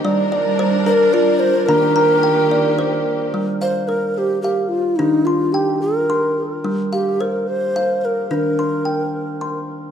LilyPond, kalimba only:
<<
  \new Staff \with { instrumentName = "Kalimba" } { \time 6/8 \key g \minor \tempo 4. = 73 << { d''8 d''4 bes'4. | bes''8 bes''4 d''4. | r8 f''4. r4 | r8 c'''4. r4 |
r8 f''4. r4 | r8 c'''4. r4 | } \\ { g4 c''4 f'4 | d'4 g''4 c''4 | r4 c''4 f''4 | d'4 g''4 c'''4 |
g4 c''4 f''4 | d'4 g''4 c'''4 | } >> }
  \new Staff \with { instrumentName = "Kalimba" } { \clef bass \time 6/8 \key g \minor r2. | ees2. | g2. | ees2. |
r2. | ees2. | }
>>